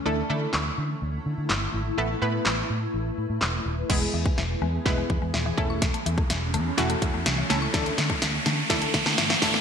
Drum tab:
CC |----------------|----------------|x---------------|----------------|
HH |----------------|----------------|----------------|xxx-x-x-xxx-x-x-|
CP |----x-------x---|----x-------x---|----------------|----------------|
SD |----o-------o---|----o-------o---|o---o---o---o---|o---o---o---o-o-|
BD |----------------|----------------|o--o----o-o---o-|o--o------o-----|

CC |----------------|
HH |xxx-x-x-xxx-x-o-|
CP |----------------|
SD |o-o-o-o-o-oooooo|
BD |o--o----o-o---o-|